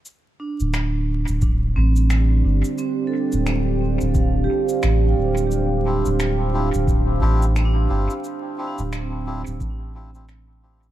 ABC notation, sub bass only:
X:1
M:4/4
L:1/16
Q:"Swing 16ths" 1/4=88
K:Dm
V:1 name="Sub bass" clef=bass
z3 D,,,4 D,,,3 A,,,4 G,,, z | z3 D,,,4 D,,,3 z2 A,,,2 D,,,2- | D,,,3 D,,,4 D,,,3 A,,,4 G,,, z | z3 D,,,4 D,,, A,,,8 |]